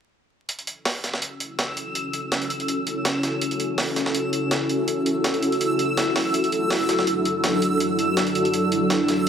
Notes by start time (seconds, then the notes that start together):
0.49 C#4 E4 F#4 A4 E6, closed hi-hat
0.59 closed hi-hat
0.67 closed hi-hat
0.85 snare, open hi-hat
1.04 snare, closed hi-hat
1.13 snare
1.22 closed hi-hat
1.40 closed hi-hat
1.59 snare, closed hi-hat
1.77 closed hi-hat
1.95 closed hi-hat
2.13 closed hi-hat
2.32 snare, closed hi-hat
2.42 closed hi-hat
2.50 closed hi-hat
2.60 closed hi-hat
2.68 closed hi-hat
2.87 closed hi-hat
3.05 snare, closed hi-hat
3.23 snare, closed hi-hat
3.41 closed hi-hat
3.51 closed hi-hat
3.60 closed hi-hat
3.78 snare, open hi-hat
3.96 snare, closed hi-hat
4.06 snare
4.15 closed hi-hat
4.33 closed hi-hat
4.51 snare, closed hi-hat
4.69 closed hi-hat
4.88 closed hi-hat
5.06 closed hi-hat
5.24 snare, closed hi-hat
5.34 closed hi-hat
5.43 closed hi-hat
5.52 closed hi-hat
5.61 closed hi-hat
5.79 closed hi-hat
5.97 snare, closed hi-hat
6.16 snare, open hi-hat
6.34 F#3 D4, closed hi-hat
6.44 closed hi-hat
6.52 closed hi-hat
6.70 snare, open hi-hat
6.89 snare, closed hi-hat
6.99 snare
7.07 closed hi-hat
7.25 closed hi-hat
7.44 snare, closed hi-hat
7.62 closed hi-hat
7.80 closed hi-hat
7.99 closed hi-hat
8.17 snare, closed hi-hat
8.27 closed hi-hat
8.35 closed hi-hat
8.45 closed hi-hat
8.54 closed hi-hat
8.72 closed hi-hat
8.90 snare, closed hi-hat
9.08 snare, closed hi-hat